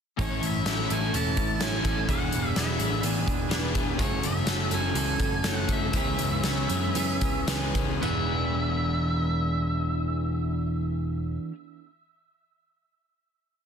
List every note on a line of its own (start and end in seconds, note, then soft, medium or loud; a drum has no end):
0.17 0.38 A1 medium
0.17 0.89 A2 medium
0.17 0.90 A2 medium
0.17 2.07 E3 medium
0.17 0.66 E3 medium
0.17 0.63 A3 medium
0.17 0.65 C#4 loud
0.17 0.67 E4 loud
0.17 0.67 A4 medium
0.17 kick loud
0.17 closed hi-hat medium
0.21 0.67 C#4 loud
0.21 0.69 E4 loud
0.21 0.44 C#5 medium
0.42 0.62 A1 medium
0.42 0.93 E5 medium
0.42 closed hi-hat medium
0.64 0.86 A1 medium
0.64 1.13 E3 medium
0.64 0.91 A3 medium
0.64 0.91 C#4 medium
0.64 1.15 C#4 medium
0.64 0.90 E4 medium
0.64 0.88 A4 medium
0.64 snare loud
0.64 closed hi-hat medium
0.69 1.16 E4 medium
0.89 1.10 A1 medium
0.89 1.58 A3 medium
0.89 1.60 C#4 medium
0.89 1.62 E4 medium
0.89 1.62 A4 medium
0.89 1.13 A4 medium
0.89 1.15 G#5 medium
0.89 closed hi-hat medium
1.13 1.34 E1 medium
1.13 1.61 A2 medium
1.13 1.60 E3 medium
1.13 1.37 C#4 medium
1.13 1.36 E4 medium
1.13 1.61 A4 medium
1.13 1.63 A5 loud
1.13 closed hi-hat medium
1.36 1.57 A1 medium
1.36 1.61 C#4 medium
1.36 1.63 E4 medium
1.36 kick medium
1.36 closed hi-hat medium
1.60 1.81 A1 medium
1.60 2.07 E3 medium
1.60 1.86 A3 medium
1.60 1.85 C#4 medium
1.60 2.08 C#4 medium
1.60 1.85 E4 medium
1.60 2.10 E4 medium
1.60 1.83 A4 medium
1.60 1.85 C#5 medium
1.60 2.09 G#5 medium
1.60 snare loud
1.60 closed hi-hat medium
1.84 2.05 A1 medium
1.84 2.09 A3 medium
1.84 2.08 C#4 medium
1.84 2.10 E4 medium
1.84 2.07 A4 medium
1.84 2.09 A4 medium
1.84 kick medium
1.84 closed hi-hat medium
2.07 2.29 E1 medium
2.07 2.54 E3 medium
2.07 2.55 E3 medium
2.07 2.56 B3 loud
2.07 2.55 B3 medium
2.07 2.57 D4 medium
2.07 2.56 D4 medium
2.07 2.58 G#4 medium
2.07 2.57 G#4 loud
2.07 2.58 F#5 medium
2.07 kick loud
2.07 closed hi-hat medium
2.32 2.53 E1 medium
2.32 2.80 F#4 medium
2.32 closed hi-hat medium
2.55 2.76 E1 medium
2.55 3.48 E3 medium
2.55 3.02 E3 medium
2.55 2.81 B3 medium
2.55 3.03 B3 medium
2.55 2.79 D4 medium
2.55 3.05 D4 medium
2.55 2.77 G#4 medium
2.55 3.01 E5 medium
2.55 snare loud
2.55 closed hi-hat medium
2.59 3.06 G#4 medium
2.78 3.00 A1 medium
2.78 3.49 B3 medium
2.78 3.50 D4 medium
2.78 3.52 G#4 medium
2.78 3.02 G#4 medium
2.78 closed hi-hat medium
3.03 3.23 A1 medium
3.03 3.50 E3 medium
3.03 3.29 B3 medium
3.03 3.27 D4 medium
3.03 3.51 G#4 medium
3.03 closed hi-hat medium
3.07 3.26 G#4 medium
3.27 3.47 E1 medium
3.27 3.51 B3 medium
3.27 3.52 D4 medium
3.27 3.53 G#4 medium
3.27 kick medium
3.27 closed hi-hat medium
3.49 3.71 E1 medium
3.49 3.97 E3 medium
3.49 3.98 E3 medium
3.49 3.76 B3 medium
3.49 3.98 B3 medium
3.49 3.74 D4 medium
3.49 3.75 B4 medium
3.49 snare loud
3.49 closed hi-hat medium
3.53 3.99 D4 medium
3.53 3.72 G#4 medium
3.53 3.99 G#4 medium
3.74 3.96 E1 medium
3.74 3.98 B3 medium
3.74 3.98 D4 medium
3.74 3.97 G#4 medium
3.74 3.99 G#4 medium
3.74 kick medium
3.74 closed hi-hat medium
3.97 4.19 F#1 medium
3.97 4.70 F#2 medium
3.97 4.71 C#3 medium
3.97 4.45 E3 medium
3.97 4.45 F#3 medium
3.97 4.46 A3 medium
3.97 4.46 A3 loud
3.97 4.48 C#4 loud
3.97 4.49 F#4 loud
3.97 4.24 C#5 loud
3.97 kick loud
3.97 closed hi-hat medium
3.97 tambourine medium
4.02 4.48 A4 loud
4.22 4.43 F#1 medium
4.22 4.74 E5 loud
4.22 closed hi-hat medium
4.22 tambourine medium
4.46 4.67 F#1 medium
4.46 4.95 E3 medium
4.46 4.95 F#3 medium
4.46 4.95 A3 medium
4.46 4.72 A3 medium
4.46 4.96 C#4 medium
4.46 4.71 C#4 medium
4.46 4.68 F#4 medium
4.46 4.96 A4 medium
4.46 snare loud
4.46 closed hi-hat medium
4.46 tambourine loud
4.70 4.91 F#1 loud
4.70 5.43 A3 medium
4.70 5.44 C#4 medium
4.70 5.45 F#4 medium
4.70 4.95 A4 medium
4.70 closed hi-hat medium
4.70 tambourine medium
4.74 5.47 G#5 loud
4.94 5.15 C#2 medium
4.94 5.43 F#2 loud
4.94 5.44 C#3 loud
4.94 5.22 E3 loud
4.94 5.20 A3 loud
4.94 5.19 C#4 medium
4.94 5.44 A4 medium
4.94 5.18 A4 loud
4.94 closed hi-hat medium
4.94 tambourine soft
5.19 5.40 F#1 loud
5.19 5.43 E3 medium
5.19 5.43 A3 medium
5.19 5.45 C#4 medium
5.19 5.46 A4 medium
5.19 kick medium
5.19 closed hi-hat medium
5.19 tambourine medium
5.43 5.64 F#1 medium
5.43 5.94 E3 medium
5.43 5.91 F#3 medium
5.43 5.70 A3 medium
5.43 5.92 A3 medium
5.43 5.69 C#4 medium
5.43 5.93 C#4 medium
5.43 5.67 F#4 medium
5.43 5.68 C#5 medium
5.43 snare loud
5.43 closed hi-hat medium
5.43 tambourine medium
5.47 5.93 A4 medium
5.47 5.71 F#5 loud
5.68 5.89 F#1 medium
5.68 5.93 A3 medium
5.68 5.93 C#4 medium
5.68 5.91 F#4 medium
5.68 5.93 A4 medium
5.68 kick medium
5.68 closed hi-hat medium
5.68 tambourine soft
5.72 7.46 E5 medium
5.92 6.15 C#2 medium
5.92 6.69 C#3 medium
5.92 6.43 E3 medium
5.92 6.42 E3 medium
5.92 6.43 G#3 medium
5.92 6.43 B3 medium
5.92 6.45 C#4 medium
5.92 6.46 G#4 loud
5.92 kick medium
5.92 closed hi-hat medium
5.92 tambourine medium
5.97 6.46 G#4 loud
6.19 6.40 C#2 medium
6.19 6.70 F#4 medium
6.19 closed hi-hat medium
6.19 tambourine medium
6.43 6.65 C#2 medium
6.43 6.94 E3 medium
6.43 6.95 E3 medium
6.43 6.71 G#3 medium
6.43 6.94 B3 medium
6.43 6.69 C#4 medium
6.43 6.95 C#4 medium
6.43 6.67 G#4 medium
6.43 6.96 G#4 medium
6.43 snare loud
6.43 closed hi-hat medium
6.43 tambourine loud
6.69 6.91 F#2 medium
6.69 7.47 G#3 medium
6.69 7.48 C#4 medium
6.69 7.49 G#4 medium
6.69 6.95 G#4 medium
6.69 closed hi-hat medium
6.69 tambourine medium
6.94 7.17 F#2 medium
6.94 7.47 C#3 medium
6.94 7.46 E3 medium
6.94 7.23 B3 medium
6.94 7.21 C#4 loud
6.94 7.48 G#4 medium
6.94 7.19 G#4 medium
6.94 closed hi-hat medium
7.20 7.44 C#2 medium
7.20 7.47 B3 medium
7.20 7.48 C#4 medium
7.20 7.49 G#4 medium
7.20 kick medium
7.20 closed hi-hat medium
7.20 tambourine medium
7.47 7.71 C#2 medium
7.47 8.00 E3 medium
7.47 7.76 G#3 medium
7.47 8.01 B3 medium
7.47 8.02 C#4 medium
7.47 7.74 C#4 medium
7.47 8.02 G#4 medium
7.47 7.73 G#4 medium
7.47 7.75 B4 medium
7.47 snare loud
7.47 closed hi-hat medium
7.47 tambourine medium
7.74 7.98 C#2 medium
7.74 8.02 G#3 soft
7.74 8.01 C#4 medium
7.74 8.00 G#4 medium
7.74 8.02 G#4 medium
7.74 kick medium
7.74 closed hi-hat medium
7.74 tambourine soft
8.01 11.37 E1 medium
8.01 11.51 E3 medium
8.01 11.52 B3 medium
8.01 11.53 B3 loud
8.01 11.54 D4 medium
8.01 11.54 D4 loud
8.01 8.80 E4 medium
8.01 11.55 G#4 loud
8.01 11.36 E5 medium
8.01 tambourine medium
8.05 11.55 G#4 medium